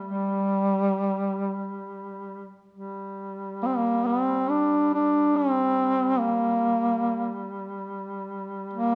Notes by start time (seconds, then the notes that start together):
Already playing: G3
0.07 G3
2.70 G3
3.63 A#3 C4
3.77 A#3
4.06 C4
4.50 D4
4.94 D4
5.36 C4
6.19 A#3
8.74 A#3